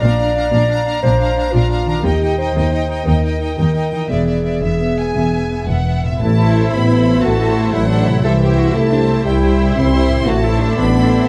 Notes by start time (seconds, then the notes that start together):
Already playing: A#2 F4 A#4
0.01 A#1 A#2 D4 D5 F5 A#5
0.18 D4 F5 A#5
0.35 D4 F5 A#5
0.51 A#1 A#2 D4 F5 A#5
0.69 D4 F5 A#5
0.86 D4 F5 A#5
1.03 A#1 A#2 D4 C5 F5 A#5
1.19 D4 F5 A#5
1.37 D4 F5 A#5
1.53 A#1 A#2 D4 F4 F5 A#5
1.70 D4 F5 A#5
1.86 D#3 D4 A#5
1.90 D#4 F5
1.95 G4
1.99 A#4
2.03 D#2 D#4 G4 D#5 G5
2.22 D#4 D#5 G5
2.38 D#4 C5 D#5 G5
2.56 D#2 D#4 D#5 G5
2.73 D#4 D#5 G5
2.89 D#4 D#5 G5
3.05 D#2 D#4 A#4 D#5 G5
3.24 D#4 D#5 G5
3.41 D#4 D#5 G5
3.57 D#2 D#4 A#4 D#5 G5
3.75 D#4 D#5 G5
3.91 E3 D#4 D#5 G5
3.97 B3
4.01 E4
4.05 D5 E5
4.10 E1 E2 B3 G#4 D5
4.26 B3 D5 E5
4.44 B3 D5 E5
4.62 E1 E2 B3 E5
4.79 B3 E5
4.98 B3 E5 G#5
5.15 E1 E2 B3 E5
5.33 B3 E5
5.51 B3 E5
5.67 E1 E2 B3 E5 F#5
5.85 B3 E5
6.02 A2 B3 E5
6.07 C4
6.11 E4
6.16 A4
6.20 A1 A3 E4 A5
6.37 E4 A4 C5 E5
6.71 A1 B3 B5
6.89 E4 A4 C5 E5
7.22 A1 A3 F#4 A5
7.39 E4 A4 C5 E5
7.73 A1 F#3 E4 F#5
7.89 D4 E4 A4 C5 E5
8.06 C3 E4
8.10 C4
8.14 E4
8.19 G4
8.24 C2 E3 E4 G4 A4 C5 E5
8.41 E4 G4 C5 E5
8.57 F#4
8.74 C2 A3 E4 A5
8.91 D4 E4 G4 C5 E5
9.08 C4
9.25 C2 G3 E4 G5
9.42 E4 G4 C5 E5
9.75 C2 C4 C6
9.92 E4 G4 C5 E5
10.08 A2
10.13 C4
10.17 E4
10.22 A4
10.26 A1 A3 F#4 A5
10.43 E4 A4 C5 E5
10.61 D4
10.77 A1 B3 B5
10.94 E4 A4 C5 E5